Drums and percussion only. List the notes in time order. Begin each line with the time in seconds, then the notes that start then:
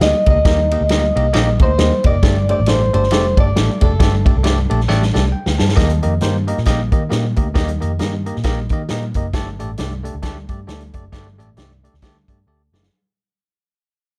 0.01 snare, ride
0.26 kick, ride
0.45 kick, snare, ride
0.71 ride
0.89 snare, ride
1.17 ride
1.33 snare, ride
1.59 kick, ride
1.78 snare, ride
2.04 kick, ride
2.23 kick, snare, ride
2.49 ride
2.66 snare, ride
2.94 ride
3.03 snare
3.11 snare, ride
3.37 kick, ride
3.56 snare, ride
3.81 kick, ride
4.00 kick, snare, ride
4.26 kick, ride
4.44 snare, ride
4.71 ride
4.80 snare
4.90 snare
5.02 snare
5.15 snare
5.46 snare
5.59 snare
5.69 snare
5.77 kick, snare, closed hi-hat
5.90 closed hi-hat
6.03 closed hi-hat
6.21 snare, closed hi-hat
6.48 closed hi-hat
6.57 snare
6.65 kick, snare, closed hi-hat
6.92 kick, closed hi-hat
7.11 snare, closed hi-hat
7.36 kick, closed hi-hat
7.55 kick, snare, closed hi-hat
7.68 closed hi-hat
7.82 closed hi-hat
7.99 snare, closed hi-hat
8.26 closed hi-hat
8.36 snare
8.44 kick, snare, closed hi-hat
8.69 kick, closed hi-hat
8.89 snare, closed hi-hat
9.14 kick, closed hi-hat
9.33 kick, snare, closed hi-hat
9.60 closed hi-hat
9.78 snare, closed hi-hat
10.05 closed hi-hat
10.23 kick, snare, closed hi-hat
10.49 kick, closed hi-hat
10.68 snare, closed hi-hat
10.80 closed hi-hat
10.94 kick, closed hi-hat
11.13 kick, snare, closed hi-hat
11.40 closed hi-hat
11.57 snare, closed hi-hat
11.85 closed hi-hat
11.94 snare
12.02 kick, snare, closed hi-hat
12.28 kick, closed hi-hat
12.74 snare
12.83 snare